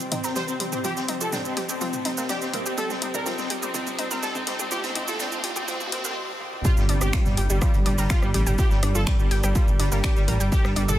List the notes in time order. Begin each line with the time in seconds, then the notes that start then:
Already playing: C3 C4 G4 D#5, riser
0.00 shaker
0.11 C4 D#4, closed hi-hat, mid tom
0.24 C4 A#4, snare, shaker
0.36 G3 C5, snare, closed hi-hat, mid tom, shaker
0.48 C4, shaker
0.60 G3 C4, closed hi-hat, mid tom
0.72 C4 G4, closed hi-hat, mid tom, shaker
0.84 F3 G4, closed hi-hat, mid tom, shaker
0.96 C4, snare, shaker
1.08 C4 D#4, closed hi-hat, mid tom
1.21 F3 A4, shaker
1.33 C4 D4, snare, closed hi-hat, mid tom, shaker
1.45 C4, shaker
1.56 G4, snare, closed hi-hat, mid tom
1.69 C4 G4, shaker
1.81 F3 C4, closed hi-hat, mid tom, shaker
1.93 mid tom, shaker
2.05 C4 D#4, snare, closed hi-hat, mid tom
2.17 A#3 C4, snare, shaker
2.29 D4 G4, snare, closed hi-hat, mid tom, shaker
2.42 C4, snare, shaker
2.54 A#3 C4, closed hi-hat, mid tom
2.66 C4 G4, closed hi-hat, shaker
2.77 G3 F4 A4, closed hi-hat, mid tom, shaker
2.90 C4, snare, mid tom, shaker
3.02 C4 D#4, closed hi-hat, mid tom
3.14 D4 A#4, mid tom, shaker
3.26 F3 C4, snare, closed hi-hat, mid tom, shaker
3.38 C4, snare, mid tom, shaker
3.50 G4, closed hi-hat, mid tom
3.63 G3 C4, mid tom, shaker
3.74 F3 C4, closed hi-hat, mid tom, shaker
3.87 closed hi-hat, mid tom, shaker
3.99 C4 D#4, closed hi-hat, mid tom
4.11 C4 A#4, snare, mid tom, shaker
4.23 G3 A4, snare, closed hi-hat, mid tom, shaker
4.35 C4, mid tom, shaker
4.47 G3 C4, snare, closed hi-hat, mid tom
4.59 C4 G4, mid tom, shaker
4.71 F3 G4, snare, closed hi-hat, mid tom, shaker
4.77 mid tom
4.83 C4, snare, closed hi-hat, mid tom, shaker
4.90 mid tom
4.95 C4 D#4, closed hi-hat, mid tom
5.02 mid tom
5.08 F3 A4, snare, closed hi-hat, mid tom, shaker
5.14 mid tom
5.19 C4 D4, snare, closed hi-hat, mid tom, shaker
5.26 mid tom
5.32 C4, mid tom, shaker
5.38 mid tom
5.43 G4, snare, closed hi-hat, mid tom
5.50 mid tom
5.56 C4 G4, mid tom, shaker
5.62 mid tom
5.68 F3 C4, closed hi-hat, mid tom, shaker
5.74 mid tom
5.80 mid tom, shaker
5.86 mid tom
5.92 A#3 C4, snare, closed hi-hat, mid tom
5.98 mid tom
6.04 A#3 C4, snare, mid tom, shaker
6.11 mid tom
6.29 high tom
6.41 mid tom
6.53 mid tom
6.65 G3 F4 G4 A#4 D5, kick, closed hi-hat, mid tom, shaker
6.77 G1 G3, snare, shaker
6.89 G1 G3 D4 D5, closed hi-hat
7.01 G1 D4 G4 D5, cross-stick, shaker
7.13 F3 G3 F4, finger snap, kick, snare, closed hi-hat, shaker
7.25 G1 G3, snare, mid tom, shaker
7.37 G1 G4 G5, closed hi-hat
7.50 G1 G3 G4, shaker
7.62 F3 G3 F4, kick, cross-stick, closed hi-hat, shaker
7.74 G1, closed hi-hat, shaker
7.86 G1 G3 D4 D5, closed hi-hat, mid tom
7.98 G1 G3 A#4 A#5, snare, shaker
8.10 G3 F4 G4, finger snap, kick, snare, closed hi-hat, shaker
8.22 G1 G3, cross-stick, shaker
8.34 A1 G3 G4, closed hi-hat
8.46 G1 G3 G4 G5, closed hi-hat, mid tom, shaker
8.58 F3 F4 G4, kick, closed hi-hat, shaker
8.71 G1 G3, snare, shaker
8.83 G1 G3 D4 D5, cross-stick, closed hi-hat
8.95 G1 F3 F4 A4, shaker
9.06 G3 D4 D5, finger snap, kick, snare, closed hi-hat, mid tom, shaker
9.19 G1 G3, shaker
9.31 G1 G4 G5, snare, closed hi-hat
9.43 G1 G3 G4 G5, cross-stick, shaker
9.55 F3 G3 F4, kick, closed hi-hat, shaker
9.68 G1, mid tom, shaker
9.79 G1 G3 D4 D5, snare, closed hi-hat
9.92 G1 G3 A#3 A#4, snare, shaker
10.04 D4 G4 D5, finger snap, kick, cross-stick, snare, closed hi-hat, shaker
10.16 G1 G3, snare, shaker
10.28 A1 G3 A#3 A#4, closed hi-hat, mid tom
10.40 G1 G3 G4 G5, closed hi-hat, shaker
10.52 G3 G4, kick, closed hi-hat, shaker
10.64 G1 G3, cross-stick, snare, shaker
10.76 G1 G3 D4 D5, closed hi-hat
10.88 G1 D4 A4 D5, mid tom, shaker